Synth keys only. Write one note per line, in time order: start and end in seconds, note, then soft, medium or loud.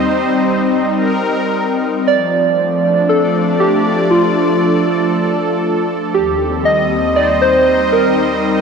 2.08 3.13 D5 loud
3.09 3.62 A4 medium
3.60 4.13 G4 medium
4.10 5.86 F4 medium
6.14 6.68 G4 medium
6.65 7.18 D#5 loud
7.16 7.28 D5 loud
7.42 7.95 C5 loud
7.92 8.61 A#4 medium